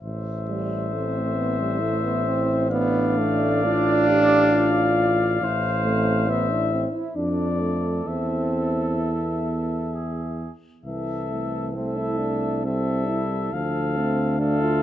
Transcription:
0.00 5.37 A1 medium
0.00 2.67 C5 medium
0.00 2.66 E5 medium
0.48 0.94 G3 medium
0.92 1.38 A3 medium
0.92 1.82 C4 medium
1.36 1.62 B3 medium
1.60 1.83 G3 medium
1.80 2.05 A3 medium
1.80 2.69 E4 medium
2.04 2.27 B3 medium
2.26 2.71 C4 loud
2.69 3.20 B3 loud
2.69 3.65 D4 medium
2.69 5.45 D5 medium
2.69 6.31 F5 medium
3.18 3.66 A3 loud
3.63 5.41 D4 loud
3.63 4.09 F4 medium
4.08 4.55 G4 medium
4.53 5.41 F4 loud
5.41 6.85 A1 medium
5.41 5.84 E4 medium
5.41 6.89 C5 medium
5.84 6.29 A3 medium
5.84 6.29 C4 medium
6.27 6.52 B3 medium
6.27 7.17 E4 medium
6.27 6.89 E5 medium
6.50 6.73 D4 medium
6.71 6.97 C4 medium
6.95 7.18 E4 medium
7.15 8.03 F2 medium
7.15 7.78 D4 medium
7.15 7.62 D4 medium
7.15 9.95 A4 medium
7.15 8.09 D5 medium
7.61 8.08 A3 medium
8.06 10.48 E2 medium
8.06 9.02 C4 medium
8.06 10.35 E4 medium
8.06 10.52 E5 medium
9.00 9.92 B3 medium
9.94 10.53 G#4 soft
10.85 13.49 C2 medium
10.85 11.28 E3 medium
10.85 11.72 A4 medium
10.85 11.72 E5 medium
11.31 11.78 E3 medium
11.31 11.75 A3 medium
11.74 12.67 A3 medium
11.74 11.99 C4 medium
11.74 12.64 A4 medium
11.74 12.64 E5 medium
11.98 12.20 E4 medium
12.18 12.66 D4 medium
12.64 13.52 G3 medium
12.64 13.11 C4 medium
12.64 13.52 A4 medium
12.64 13.54 E5 medium
13.09 13.53 E4 medium
13.52 14.83 D2 medium
13.52 13.99 F3 medium
13.52 14.39 A4 medium
13.52 14.40 F5 medium
13.96 14.83 A3 medium
13.96 14.41 C4 medium
14.39 14.64 D4 medium
14.39 14.83 A4 medium
14.39 14.83 F5 medium
14.62 14.83 F4 medium

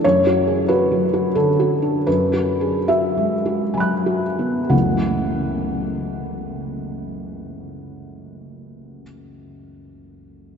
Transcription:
0.04 2.04 F#2 medium
0.04 0.69 C#5 medium
0.27 0.61 F#4 soft
0.47 0.69 G#4 soft
0.68 1.04 F#4 soft
0.68 1.34 B4 medium
0.92 1.26 F#3 soft
1.13 1.49 F#4 soft
1.35 1.73 D3 soft
1.35 2.07 A4 medium
1.60 1.97 F#4 soft
1.82 2.07 D4 soft
2.07 4.68 F#2 soft
2.07 2.88 B4 medium
2.33 2.77 F#4 soft
2.61 2.88 G#4 soft
2.88 3.33 F#4 soft
2.88 4.22 E5 medium
3.17 3.63 G#3 soft
3.46 3.93 F#4 soft
3.74 4.25 F#3 soft
3.74 4.67 G#5 soft
3.74 4.69 B5 soft
3.80 4.70 F#6 soft
4.06 4.59 F#4 soft
4.39 4.71 B3 soft
4.69 9.02 F#1 soft
4.69 9.02 C#2 soft
4.69 9.02 E3 soft
4.69 9.02 F#3 soft
4.69 9.03 A3 soft
4.69 9.03 C#4 soft
4.69 9.02 F#5 soft

